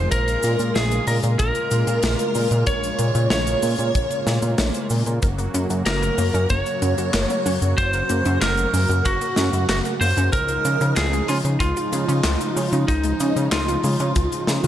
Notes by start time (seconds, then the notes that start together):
Already playing: G#3 A#3 F4 C5
0.11 A#1 C#3 A#4, kick, closed hi-hat, cabasa
0.28 closed hi-hat, cabasa
0.43 A#2, closed hi-hat, cabasa
0.59 A#2, closed hi-hat, cabasa
0.75 A#1 G#4, snare, closed hi-hat, cabasa
0.91 closed hi-hat, cabasa
1.07 A#2 A#4, open hi-hat, cabasa
1.23 A#2, closed hi-hat, cabasa
1.39 A#1 A#4, kick, closed hi-hat, cabasa
1.55 closed hi-hat, cabasa
1.71 A#2, closed hi-hat, cabasa
1.87 A#2, closed hi-hat, cabasa
2.03 A#1, snare, closed hi-hat, cabasa
2.19 closed hi-hat, cabasa
2.35 A#2, open hi-hat, cabasa
2.51 A#2, closed hi-hat, cabasa
2.66 A#1 C#5, kick, closed hi-hat, cabasa
2.83 closed hi-hat, cabasa
2.99 A#2, closed hi-hat, cabasa
3.15 A#2, closed hi-hat, cabasa
3.30 A#1 C#5, snare, closed hi-hat, cabasa
3.47 closed hi-hat, cabasa
3.62 A#2, open hi-hat, cabasa
3.79 A#2, closed hi-hat, cabasa
3.95 A#1, kick, closed hi-hat, cabasa
4.11 closed hi-hat, cabasa
4.27 A#2, snare, closed hi-hat, cabasa
4.42 A#2, closed hi-hat, cabasa
4.58 A#1, snare, closed hi-hat, cabasa
4.74 closed hi-hat, cabasa
4.90 A#2, open hi-hat, cabasa
5.06 A#2, closed hi-hat, cabasa
5.22 F#1 F#3 F#4 A#4, kick, closed hi-hat, cabasa
5.38 A#3, closed hi-hat, cabasa
5.54 F#2 C#4, closed hi-hat, cabasa
5.70 F#2, closed hi-hat, cabasa
5.86 F#1 F#4 A#4, snare, clap, closed hi-hat, cabasa
6.02 A#4, closed hi-hat, cabasa
6.18 F#2 A#3, open hi-hat, cabasa
6.34 F#2 C#4, closed hi-hat, cabasa
6.50 F#1 A#3 C#5, kick, closed hi-hat, cabasa
6.66 closed hi-hat, cabasa
6.82 F#2 C#4, closed hi-hat, cabasa
6.98 F#2 F#4, closed hi-hat, cabasa
7.14 F#1 A#4, snare, clap, closed hi-hat, cabasa
7.30 A#3, closed hi-hat, cabasa
7.46 F#2 C#4, open hi-hat, cabasa
7.62 F#2, closed hi-hat, cabasa
7.77 F#1 F#4 C5, kick, closed hi-hat, cabasa
7.93 A#4, closed hi-hat, cabasa
8.09 F#2 A#3, closed hi-hat, cabasa
8.25 F#2 C#4, closed hi-hat, cabasa
8.41 F#1 A#3 A#4, snare, clap, closed hi-hat, cabasa
8.57 closed hi-hat, cabasa
8.74 F#2 C#4, open hi-hat, cabasa
8.88 F#2 F#4, closed hi-hat, cabasa
9.05 F#1 F#4 A#4, kick, closed hi-hat, cabasa
9.21 A#3, closed hi-hat, cabasa
9.36 F#2 C#4, snare, closed hi-hat, cabasa
9.53 F#2, closed hi-hat, cabasa
9.69 F#1 F#4, snare, clap, closed hi-hat, cabasa
9.85 A#4, closed hi-hat, cabasa
10.01 F#2 A#3 C5, open hi-hat, cabasa
10.17 F#2 C#4, closed hi-hat, cabasa
10.32 C#2 F3 G#3 D#4 A#4, kick, closed hi-hat, cabasa
10.48 closed hi-hat, cabasa
10.65 C#3 C#4, closed hi-hat, cabasa
10.81 C#3 D#4, closed hi-hat, cabasa
10.96 C#2 F4 G#4, snare, clap, closed hi-hat, cabasa
11.13 G#3, closed hi-hat, cabasa
11.28 C#3 C#4 F4, open hi-hat, cabasa
11.45 C#3, closed hi-hat, cabasa
11.60 C#2 D#4 F4, kick, closed hi-hat, cabasa
11.77 F4, closed hi-hat, cabasa
11.93 C#3 G#3, closed hi-hat, cabasa
12.08 C#3 C#4, closed hi-hat, cabasa
12.24 C#2 G#3, snare, clap, closed hi-hat, cabasa
12.41 closed hi-hat, cabasa
12.56 C#3 C#4, open hi-hat, cabasa
12.72 C#3 D#4, closed hi-hat, cabasa
12.88 C#2 D#4 F4, kick, closed hi-hat, cabasa
13.04 G#3, closed hi-hat, cabasa
13.20 C#3 C#4, closed hi-hat, cabasa
13.36 C#3, closed hi-hat, cabasa
13.52 C#2 D#4 F4, snare, clap, closed hi-hat, cabasa
13.68 F4, closed hi-hat, cabasa
13.83 C#3 G#3, open hi-hat, cabasa
13.99 C#3 C#4, closed hi-hat, cabasa
14.16 C#2 G#3, kick, closed hi-hat, cabasa
14.32 closed hi-hat, cabasa
14.47 C#3 G#4, snare, closed hi-hat, cabasa
14.64 C#3 F4, closed hi-hat, cabasa